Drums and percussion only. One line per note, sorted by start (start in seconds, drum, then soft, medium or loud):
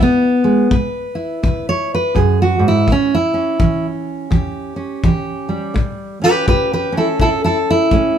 0.71 kick medium
1.44 kick medium
2.16 kick medium
2.88 kick medium
3.60 kick medium
4.32 kick medium
5.04 kick medium
5.76 kick medium
6.48 kick medium
7.20 kick medium
7.91 kick medium